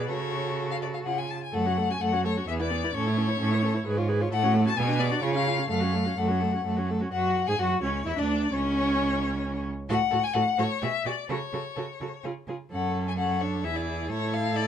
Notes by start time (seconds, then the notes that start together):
Already playing: B2
0.08 C#3 F#4 A4 C#5
0.71 F5
0.82 D5
0.94 F5
1.05 C#3 F4 G#4 F#5
1.18 G#5
1.30 A5
1.43 G#5
1.53 F#2 A3 A4 F#5
1.66 C#4 F#4
1.76 A3 A4
1.90 C#4 F#4 G#5
2.00 F#2 A3 A4 F#5
2.12 C#4 F#4
2.25 A3 A4 C#5
2.37 C#4 F#4
2.47 E2 B3 G#4 E5
2.60 E4 B4 D5
2.71 B3 G#4
2.84 E4 B4
2.94 A2 C#4 A4 C#5
3.06 E4 C#5
3.17 C#4 A4
3.28 E4 C#5
3.39 A2 C#4 A4
3.51 E4 C#5
3.63 C#4 A4
3.74 E4 C#5
3.86 G#2 G#4 B4
3.97 F4 C#5
4.08 G#4 B4
4.21 F4 C#5
4.32 A2 A3 A4 F#5
4.43 C#4 F#4
4.54 A3 A4
4.66 C#4 F#4 A5
4.76 B2 B3 G#4 G#5
4.88 D4 F#4
4.99 B3 G#4 D5
5.11 D4 F#4
5.22 C#3 F4 G#4 C#5
5.34 C#4 F4 F5
5.46 F4 G#4
5.58 C#4 F4
5.68 F#2 A3 A4 F5
5.80 C#4 F#4
5.92 A3 A4
6.04 C#4 F#4
6.16 F#2 A3 A4 F#5
6.28 C#4 F#4
6.40 A3 A4
6.52 C#4 F#4
6.64 F#2 A3 A4
6.76 C#4 F#4
6.89 A3 A4
7.00 C#4 F#4
7.12 F#2 F#4 F#5
7.47 G#2 G#4 G#5
7.59 F#2 F#4 F#5
7.82 C#2 C#4 C#5
8.06 E2 E4 E5
8.17 D2 D4 D5
8.52 C#2 C#4 C#5
9.89 A2 F#4 A4 F#5
10.10 A2 F#4 A4
10.23 G#5
10.33 A2 F#4 A4 F#5
10.58 A2 F#4 A4 C#5
10.82 B2 F#4 G#4 E5
11.05 B2 F#4 G#4 D5
11.29 C#3 F#4 A4 C#5
11.53 C#3 F#4 A4
11.76 C#3 F#4 A4
12.01 C#3 F#4 A4
12.24 C#3 F4 G#4
12.47 C#3 F4 G#4
12.71 F#2 C#4 A4 F#5
13.08 G#5
13.17 C#4 A4 F#5
13.41 D4 C#5
13.64 E2 E4 G#4 E5
13.76 D5
14.09 A2 E4 A4 C#5
14.34 F5
14.56 D5